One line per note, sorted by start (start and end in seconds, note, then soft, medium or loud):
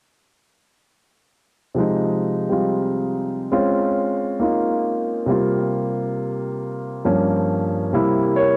1.74 3.52 C3 soft
1.74 3.53 F3 soft
1.74 3.50 G#3 soft
1.79 3.54 D#4 soft
2.49 3.52 G3 soft
2.49 3.50 C4 soft
2.49 3.51 F4 soft
3.52 5.28 G#3 soft
3.52 5.28 C4 soft
3.52 5.29 C#4 soft
3.52 4.41 F4 soft
4.40 5.28 A#3 soft
4.40 5.29 D#4 soft
4.40 5.30 F4 soft
5.26 7.04 C3 soft
5.26 7.04 G3 soft
5.26 7.04 A#3 soft
5.31 7.06 F4 soft
7.05 7.93 G2 soft
7.05 7.93 F3 soft
7.05 7.93 A#3 soft
7.05 7.94 C#4 soft
7.93 8.57 C3 soft
7.93 8.57 G3 soft
7.93 8.57 A#3 soft
7.93 8.57 E4 soft
8.36 8.57 A#4 soft
8.36 8.55 C#5 medium